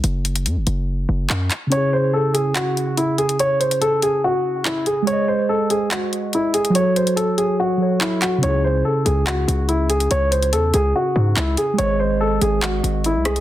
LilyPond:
<<
  \new Staff \with { instrumentName = "Grand piano" } { \time 4/4 \key cis \minor \tempo 4 = 143 r1 | cis''8 bis'8 a'8 gis'8 fis'4 e'8 gis'8 | cis''8 bis'8 a'8 gis'8 fis'4 e'8 gis'8 | cis''8 bis'8 a'8 gis'8 fis'4 e'8 gis'8 |
cis''8 bis'8 a'8 gis'8 fis'4 e'8 fis'8 | cis''8 bis'8 a'8 gis'8 fis'4 e'8 gis'8 | cis''8 bis'8 a'8 gis'8 fis'4 e'8 gis'8 | cis''8 bis'8 a'8 gis'8 fis'4 e'8 gis'8 | }
  \new Staff \with { instrumentName = "Synth keys" } { \time 4/4 \key cis \minor r1 | <cis cis' e' gis'>1~ | <cis cis' e' gis'>1 | <gis gis' bis' dis''>1 |
<fis fis' a' cis''>2~ <fis fis' a' cis''>8 <fis fis' a' cis''>4. | <cis cis' e' gis'>1~ | <cis cis' e' gis'>1 | <gis gis' bis' dis''>1 | }
  \new Staff \with { instrumentName = "808-style bass" } { \clef bass \time 4/4 \key cis \minor fis,,4 fis,16 fis,,16 fis,,4 fis,,8 fis,8 r8 | r1 | r1 | r1 |
r1 | cis,4 r8 cis,4 cis,4. | cis,4 e,8 cis,8 r8 gis,8 cis,8 r8 | gis,,4. gis,,4 gis,,8. bis,,8. | }
  \new DrumStaff \with { instrumentName = "Drums" } \drummode { \time 4/4 hh8 hh16 hh16 hh8 hh8 r4 hc8 <hc hh>8 | hh4 r8 hh8 <hc hh>8 hh8 hh8 hh16 hh16 | hh8 hh16 hh16 hh8 hh8 r4 hc8 hh8 | hh4 r8 hh8 <hc hh>8 hh8 hh8 hh16 hh16 |
hh8 hh16 hh16 hh8 hh8 r4 hc8 <hc hh>8 | hh4 r8 hh8 <hc hh>8 hh8 hh8 hh16 hh16 | hh8 hh16 hh16 hh8 hh8 r4 hc8 hh8 | hh4 r8 hh8 <hc hh>8 hh8 hh8 <hh ss>16 hh16 | }
>>